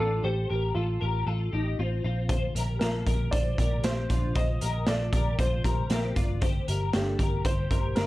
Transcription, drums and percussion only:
2.29 kick medium
2.29 closed hi-hat medium
2.56 closed hi-hat medium
2.81 snare medium
2.81 closed hi-hat medium
3.07 kick medium
3.07 closed hi-hat medium
3.33 kick medium
3.33 closed hi-hat medium
3.58 kick medium
3.58 closed hi-hat medium
3.84 snare medium
3.84 closed hi-hat medium
4.10 kick medium
4.10 closed hi-hat medium
4.35 kick loud
4.35 closed hi-hat medium
4.61 closed hi-hat medium
4.87 snare loud
4.87 closed hi-hat medium
5.13 kick medium
5.13 closed hi-hat medium
5.39 kick medium
5.39 closed hi-hat medium
5.64 kick medium
5.64 closed hi-hat medium
5.90 snare medium
5.90 closed hi-hat medium
6.16 kick medium
6.16 closed hi-hat medium
6.42 kick medium
6.42 closed hi-hat medium
6.68 closed hi-hat medium
6.93 snare medium
6.93 closed hi-hat medium
7.19 kick medium
7.19 closed hi-hat medium
7.45 kick medium
7.45 closed hi-hat medium
7.71 kick medium
7.71 closed hi-hat medium
7.96 snare loud
7.96 closed hi-hat medium

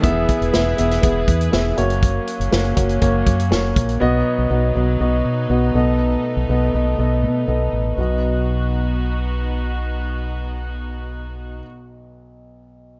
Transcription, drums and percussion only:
0.04 kick loud
0.04 closed hi-hat medium
0.29 kick medium
0.29 closed hi-hat medium
0.42 closed hi-hat soft
0.54 snare loud
0.78 closed hi-hat medium
0.91 snare soft
0.91 closed hi-hat soft
1.03 kick medium
1.03 closed hi-hat medium
1.28 kick medium
1.28 closed hi-hat medium
1.41 closed hi-hat soft
1.53 snare medium
1.78 closed hi-hat medium
1.90 closed hi-hat soft
2.03 kick medium
2.03 closed hi-hat medium
2.27 closed hi-hat medium
2.41 closed hi-hat soft
2.53 snare loud
2.65 closed hi-hat soft
2.77 kick medium
2.77 closed hi-hat medium
2.89 closed hi-hat soft
3.02 kick medium
3.02 closed hi-hat medium
3.27 kick medium
3.27 closed hi-hat medium
3.40 closed hi-hat soft
3.52 snare medium
3.76 kick medium
3.76 closed hi-hat medium
3.89 closed hi-hat soft

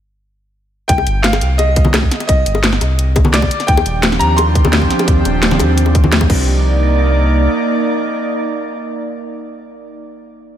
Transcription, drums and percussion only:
0.89 kick loud
0.89 closed hi-hat loud
0.98 high bongo medium
1.07 closed hi-hat medium
1.24 snare loud
1.24 closed hi-hat loud
1.33 snare soft
1.33 high bongo medium
1.41 closed hi-hat medium
1.59 closed hi-hat loud
1.59 high bongo medium
1.76 kick loud
1.76 closed hi-hat medium
1.85 high conga medium
1.94 snare loud
1.94 closed hi-hat loud
1.94 high bongo medium
2.03 kick medium
2.11 snare medium
2.11 closed hi-hat medium
2.20 closed hi-hat soft
2.20 high bongo medium
2.29 kick loud
2.29 closed hi-hat loud
2.46 closed hi-hat medium
2.55 high bongo medium
2.64 snare loud
2.64 closed hi-hat medium
2.73 snare soft
2.81 closed hi-hat medium
2.81 high bongo medium
2.99 closed hi-hat loud
3.16 kick loud
3.16 closed hi-hat medium
3.16 high bongo medium
3.25 high conga loud
3.34 snare loud
3.34 closed hi-hat medium
3.42 kick medium
3.42 high bongo medium
3.51 closed hi-hat medium
3.60 snare soft
3.60 closed hi-hat soft
3.68 kick loud
3.68 closed hi-hat medium
3.77 high bongo medium
3.86 closed hi-hat medium
4.03 snare loud
4.03 closed hi-hat medium
4.03 high bongo medium
4.12 snare medium
4.21 closed hi-hat medium
4.38 closed hi-hat medium
4.38 high bongo medium
4.55 kick loud
4.55 closed hi-hat medium
4.65 high bongo medium
4.65 high conga loud
4.73 snare loud
4.73 closed hi-hat medium
4.82 kick medium
4.91 snare soft
4.91 closed hi-hat medium
4.99 closed hi-hat soft
4.99 high bongo medium
5.08 kick loud
5.08 closed hi-hat medium
5.25 closed hi-hat medium
5.25 high bongo medium
5.43 snare loud
5.43 closed hi-hat medium
5.51 snare soft
5.51 high conga medium
5.59 closed hi-hat medium
5.59 high bongo medium
5.78 closed hi-hat medium
5.86 high bongo medium
5.95 kick loud
5.95 closed hi-hat medium
6.04 high conga medium
6.12 snare loud
6.12 closed hi-hat medium
6.21 kick medium
6.21 high bongo medium
6.30 kick loud
6.30 crash medium

